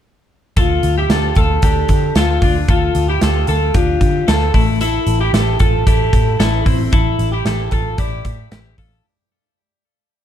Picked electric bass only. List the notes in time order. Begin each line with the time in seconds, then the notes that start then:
0.57 D2
0.83 D2
1.09 D2
1.36 D2
1.63 D2
1.89 D3
2.16 D2
2.42 D2
2.68 D2
2.95 D2
3.22 D2
3.48 D2
3.74 D2
4.01 D3
4.28 D2
4.54 A1
5.07 A1
5.33 A1
5.60 A1
5.87 A1
6.13 A2
6.40 A1
6.66 A1
6.92 A1
7.19 A1
7.45 A1
7.72 A1
7.98 A1
8.25 A2
8.52 A1
8.78 A1